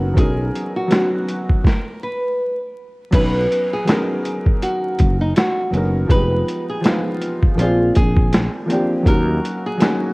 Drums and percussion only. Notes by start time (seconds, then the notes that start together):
0.17 kick, closed hi-hat
0.55 closed hi-hat
0.91 snare, closed hi-hat
1.29 closed hi-hat
1.50 kick
1.65 kick, snare
3.13 kick, closed hi-hat, crash
3.52 closed hi-hat
3.87 snare, closed hi-hat
4.25 closed hi-hat
4.46 kick
4.62 closed hi-hat
4.99 kick, closed hi-hat
5.36 snare, closed hi-hat
5.74 closed hi-hat
6.10 kick, closed hi-hat
6.49 closed hi-hat
6.84 snare, closed hi-hat
7.22 closed hi-hat
7.43 kick
7.59 closed hi-hat
7.95 kick, closed hi-hat
8.16 kick
8.33 snare, closed hi-hat
8.70 closed hi-hat
9.06 kick, closed hi-hat
9.45 closed hi-hat
9.80 snare, closed hi-hat